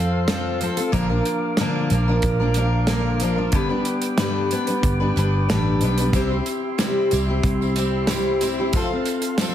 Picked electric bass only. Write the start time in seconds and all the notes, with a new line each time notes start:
Already playing: F2
0.93 A#1
1.91 A#1
2.23 A#1
3.53 G1
4.83 G1
5.17 G1
5.50 A1
5.82 B1
6.13 C2
7.13 C2
7.44 C2
8.74 F2